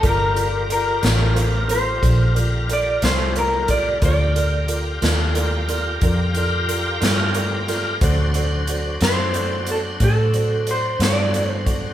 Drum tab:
HH |xxxxxxxxxxxx|xxxxxxxxxxxx|xxxxxxxxxxxx|
SD |---o-----o--|---o-----o-o|---o-----o--|
BD |o-----o----o|o-----o-----|o-----o----o|